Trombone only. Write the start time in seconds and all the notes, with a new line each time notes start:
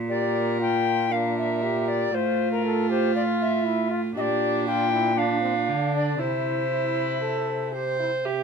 0.09 G4
0.60 F4
1.12 D4
1.62 G4
2.13 F4
2.64 A4
2.90 G4
3.15 F4
3.66 E4
3.90 F4
4.17 G4
4.67 F4
4.92 E4
5.16 D4
5.41 C4
5.68 D4
6.19 E4
6.71 E4
7.21 A4
7.75 G4
8.00 E4
8.25 C4